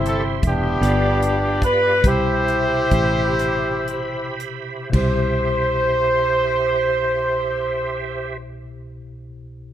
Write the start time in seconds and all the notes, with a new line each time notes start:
Already playing: G1 G2 C3 C4 E4 G4 E5 C6
0.06 A4, closed hi-hat
0.43 E1, kick, closed hi-hat
0.48 B3 D4 G4
0.81 G1 G2 B3 F4 G4 D5 F5 B5, cross-stick, closed hi-hat
1.22 closed hi-hat
1.62 B4, kick, closed hi-hat
2.03 C2 B2 C3 E4 G4 C5 E5, kick, closed hi-hat
2.07 E4 G4 C5
2.48 closed hi-hat
2.91 A1, kick, closed hi-hat
3.39 cross-stick, closed hi-hat
3.88 closed hi-hat
4.40 closed hi-hat
4.90 C2 B2 E4 G4 C5 E5, kick, crash
4.95 G4 C5